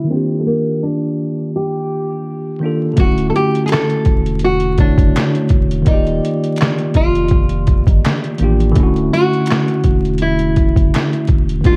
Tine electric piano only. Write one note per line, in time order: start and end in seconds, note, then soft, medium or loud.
0.04 2.55 D#3 medium
0.04 2.57 A#3 medium
0.10 2.58 D4 medium
0.10 2.60 F4 medium
0.16 2.61 G4 medium
2.60 2.97 D#3 medium
2.60 2.98 A#3 soft
2.60 2.98 D4 soft
2.64 2.99 F4 soft
2.64 3.00 A4 medium
2.94 4.73 D3 medium
2.94 4.74 A3 medium
2.99 4.76 C#4 medium
2.99 4.77 E4 medium
3.05 4.79 F#4 medium
4.77 5.86 D3 medium
4.77 5.87 A3 soft
4.77 5.88 C#5 soft
4.81 5.88 E4 soft
4.81 5.89 F#4 medium
5.82 8.34 D#3 medium
5.82 8.35 A#3 medium
5.88 8.38 F4 medium
5.88 8.36 D5 medium
5.94 8.39 G4 medium
8.38 8.75 D#3 medium
8.38 8.76 A#3 medium
8.38 8.77 D4 medium
8.43 8.77 F4 medium
8.43 8.78 G4 medium
8.72 11.59 D3 medium
8.72 11.60 A3 medium
8.77 11.62 C#4 medium
8.77 11.63 E4 medium
8.83 11.65 F#4 medium
11.61 11.77 D#3 medium
11.61 11.77 A#3 medium
11.67 11.77 D4 medium
11.67 11.77 F4 medium
11.73 11.76 F#4 medium